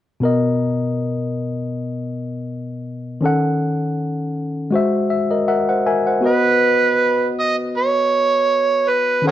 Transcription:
0.20 B2 B3 A#4
0.25 D#5
3.21 D#3 C#4 A4
3.26 F#5
4.71 G#3 F#4 C5
4.76 E5
5.10 E5
5.31 A#4 D#5
5.48 A#4 E5 F#5
5.69 C5 F#5
5.87 A#4 E5 G#5
6.07 C5 F#5
6.21 B3 F#4 B4
6.26 B4 D#5
7.39 D#5
7.77 C#5
8.90 B4
9.22 D#3 C#4 A4
9.27 G#4 A#4 C#5 F#5

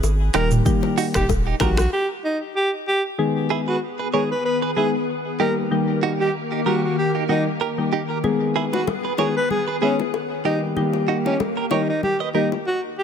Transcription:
0.03 G#1, high bongo, shaker
0.34 D#1 D#3 G3 A#3 D#4 G4 A#4, finger snap, cross-stick, shaker
0.51 mid tom, shaker
0.65 D#3 G3 A#3 G4, kick, low conga, shaker
0.83 low bongo
0.98 D#4 F#4, open hi-hat, shaker
1.14 D#1 D#4 G4, finger snap, kick, cross-stick, shaker
1.29 kick, high bongo, low conga, shaker
1.47 D#4 G4
1.60 A#1 D#3 G3 A#3 F#4 G4 A#4, finger snap, kick, cross-stick, low bongo, shaker
1.77 F#4, finger snap, cross-stick, high bongo, shaker
1.93 G4
2.24 D#4
2.56 G4
2.87 G4
3.18 D#3 G#3 B3 G#4 B4
3.50 E4 G#4
3.68 F#4 G#4 B4
3.99 G#4 B4
4.13 D#3 G#3 B3 G#4 A#4 C#5
4.31 B4
4.45 B4
4.62 G#4 B4
4.76 D#3 G#3 B3 E4 G#4
5.39 D#3 G3 A#3 D#4 G4 A#4
5.71 D#3 G3 A#3 G4
6.03 D#4 F#4
6.20 D#4 G4
6.52 D#4 G4
6.66 D#3 G3 A#3 F#4 G4 A#4
6.84 F#4
6.98 G4
7.15 D#4 G4
7.29 D#3 G3 A#3 D#4 F#4 G4
7.61 G4 A#4
7.78 D#3 G3 A#3 G4
7.93 D#4 G4
8.10 G4 A#4
8.24 D#3 G#3 B3 G#4 B4, low conga
8.56 E4 G#4
8.73 F#4 G#4 B4, low bongo
8.87 high bongo, low conga
9.05 G#4 B4
9.18 D#3 G#3 B3 G#4 A#4 C#5, low bongo
9.37 B4
9.50 G#4, low conga
9.68 G#4 B4
9.82 D#3 G#3 B3 C#4 E4 G#4
10.00 low bongo
10.14 high bongo
10.45 D#3 G3 A#3 D#4 G4 A#4
10.76 D#3 G3 A#3 G4, low conga
10.93 low bongo
11.08 D#4 F#4
11.26 C#4 D#4 G4, low bongo
11.40 high bongo, low conga
11.57 G4 A#4
11.71 D#3 G3 A#3 D#4 G4 A#4 C#5, low bongo
11.89 D#4
12.03 G4, low conga
12.20 B4 D#5
12.34 D#3 G3 A#3 D#4 G4 A#4
12.52 low bongo
12.67 F#4
12.98 G4

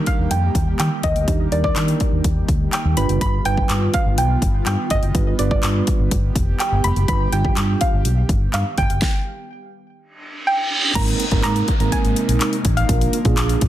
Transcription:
Already playing: D#3 G3 A#3 D4 D#4 G4 A#4
0.06 F5, kick, closed hi-hat
0.19 D#2
0.31 F2 G5, closed hi-hat
0.55 D#2, kick, closed hi-hat
0.79 D#3 G5, clap, closed hi-hat
1.03 D#2 D#5, kick, closed hi-hat
1.16 D2, closed hi-hat
1.28 D#2 G3 D4 D#4 G4, kick, closed hi-hat
1.52 D#2 G3 D4 D#4 A#4 D5, closed hi-hat
1.64 D5, kick
1.76 D#3, clap, closed hi-hat
1.88 closed hi-hat
2.00 kick, closed hi-hat
2.12 D#2
2.24 D#2, kick, closed hi-hat
2.48 D2, kick, closed hi-hat
2.73 G5, clap, closed hi-hat
2.85 D#2
2.97 G1 G3 B3 D4 F4 B4 B5, closed hi-hat
3.09 F#1, closed hi-hat
3.21 G1 B5, kick, closed hi-hat
3.45 G1 G3 D4 F4 B4 G5, closed hi-hat
3.57 kick
3.69 G2, clap, closed hi-hat
3.94 F5, kick, closed hi-hat
4.06 G1
4.18 B1 G5, closed hi-hat
4.42 G1, kick, closed hi-hat
4.66 G2 G5, clap, closed hi-hat
4.90 G1 D#5, kick, closed hi-hat
5.03 F#1, closed hi-hat
5.15 G1 G3 D4 F4 B4, kick, closed hi-hat
5.39 G1 G3 D4 F4 B4 D5, closed hi-hat
5.51 D5, kick
5.63 G2, clap, closed hi-hat
5.87 G4, kick, closed hi-hat
5.99 G1
6.11 G1, kick, closed hi-hat
6.35 F1, kick, closed hi-hat
6.60 G5, clap, closed hi-hat
6.72 G1
6.84 F1 B5, closed hi-hat
6.96 F#1, closed hi-hat
7.08 G3 D4 F4 B4 B5, kick, closed hi-hat
7.32 G1 G3 D4 F4 G4 G5, closed hi-hat
7.45 kick
7.57 G2, clap, closed hi-hat
7.81 F5, kick, closed hi-hat
7.93 G1
8.05 B1, closed hi-hat
8.29 G1, kick, closed hi-hat
8.53 G2 F5, clap, closed hi-hat
8.78 G1 G5, kick, closed hi-hat
8.90 F#1, closed hi-hat
9.02 kick, snare
9.99 reverse cymbal
10.47 G5
10.95 G#1 C3 G#3 A#3 C4 D#4 A#4 A#5, kick, closed hi-hat, crash, downlifter
11.08 closed hi-hat
11.20 closed hi-hat
11.31 G#1 G#3 A#3 C4 D#4 A#4, kick, closed hi-hat
11.44 G#2 A#5, clap, closed hi-hat
11.56 closed hi-hat
11.68 kick, closed hi-hat
11.80 G#1 G#3 A#3 C4 D#4 A#4, closed hi-hat
11.92 G#5, kick, closed hi-hat
12.04 G#1, closed hi-hat
12.16 closed hi-hat
12.29 A#1, closed hi-hat
12.40 clap, closed hi-hat
12.53 closed hi-hat
12.65 A1, kick, closed hi-hat
12.77 F5, closed hi-hat
12.89 A#1 D3 F3 D4 F4 A#4, kick, closed hi-hat
13.01 closed hi-hat
13.13 closed hi-hat
13.25 A#2 D4 F4 G#4, kick, closed hi-hat
13.37 A#1, clap, closed hi-hat
13.49 closed hi-hat
13.61 A#1, kick, closed hi-hat

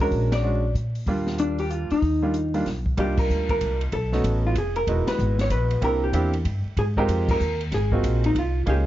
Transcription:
0.00 G#3 C#4 D4 F#4 A#4, open hi-hat
0.11 A#1, kick, open hi-hat
0.32 D5, snare, ride
0.43 G#3 C#4 D4 F#4
0.75 A#2, closed hi-hat
0.95 open hi-hat
1.06 D#2 G3 A#3 D4 F4, kick, open hi-hat
1.27 snare
1.38 D4, closed hi-hat
1.58 G4, open hi-hat
1.70 F4, closed hi-hat
1.90 D#4, muted upright bass stroke, open hi-hat
2.02 D#2, kick, open hi-hat
2.22 G3 A#3 D4 F4
2.34 closed hi-hat
2.54 G3 A#3 D4 F4, open hi-hat
2.66 B1, snare, open hi-hat
2.86 kick
2.97 C2 G3 A#3 D4 D#4 F4 G4, kick, ride
3.17 A#4, kick, crash
3.29 D2, hi-hat pedal
3.49 A#4, kick, ride
3.61 C2, kick, hi-hat pedal, ride
3.81 ride
3.92 B1 A4, kick, ride
4.12 A3 B3 C#4 D#4 F#4, snare
4.24 A1, kick, hi-hat pedal, ride
4.47 F4
4.55 F1 G#4, kick, hi-hat pedal, ride
4.76 A#4, ride
4.87 E1 G#3 B3 D#4 E4 F#4, kick, ride
5.07 B4, snare, ride
5.19 G#1, hi-hat pedal
5.39 C#5, snare, ride
5.50 A#1 B4, kick, hi-hat pedal, ride
5.71 ride
5.81 C2 A#3 C4 D4 E4 G4 A#4, kick, ride
6.04 G4
6.13 E2 A#3 C4 D4 E4 G4, kick, hi-hat pedal, ride
6.33 ride
6.45 G2, kick, ride
6.65 muted upright bass stroke
6.77 G#2 G#4, kick, ride
6.97 G#3 C4 D#4 F4 G4 A#4, kick
7.08 F2, kick, hi-hat pedal, ride
7.28 A#4, kick, crash
7.40 D#2, hi-hat pedal
7.61 ride
7.72 G#1 G#4, kick, snare, ride
7.92 A#3 C4 D#4 F4 F#4, kick
8.03 A#1, kick, hi-hat pedal, ride
8.24 D#4, ride
8.35 C2 F4, kick, ride
8.66 C#2 A#3 C#4 D#4 F4 G4 G#4, kick, ride

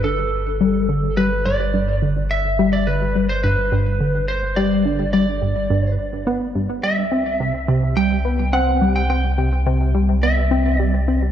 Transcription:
Already playing: G1
0.04 D3 A4
0.61 G3
0.89 D3
1.17 G3 B4
1.46 G2 D5
1.74 G2
2.02 D3
2.31 E5
2.59 G3
2.73 D5
2.87 D3 B4
3.16 G3
3.29 C5
3.43 G2 B4
3.72 G2
4.00 D3
4.28 C5
4.56 G3 D5
4.85 D3
5.13 G3 D5
5.42 G2
5.70 G2
6.27 B3
6.55 G2
6.83 C2 G3 E5
7.12 C4
7.40 C3
7.68 C3
7.97 G3 G5
8.25 B3
8.53 C4 F#5
8.81 G3
8.96 G5
9.10 C4 G5
9.38 C3
9.66 C3
9.95 G3
10.23 B3 E5
10.51 C4
10.80 G3 D5
11.08 C4

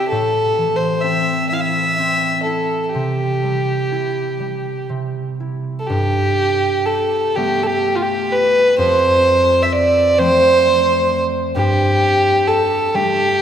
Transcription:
Already playing: C3 G3 C4 E4
0.08 A2 A4
0.58 E3
0.76 C5
1.01 C4 E5
1.49 E4 E5
1.53 F5
1.61 E5
1.99 C4
2.43 E4 A4
2.83 A4
2.90 G4
2.95 C3
3.43 G3
3.92 E4
4.40 G3
4.89 C3
5.40 E4
5.79 A4
5.87 G2 G4
6.86 A4
7.35 G3 A3 B3 G4
7.63 A4
7.67 G4
7.96 F4
8.02 G4
8.33 B4
8.78 F2 C5
9.63 E5
9.73 D5
10.18 F3 A3 C4 C5
11.56 G2 G4
12.47 A4
12.94 G3 A3 D4 G4

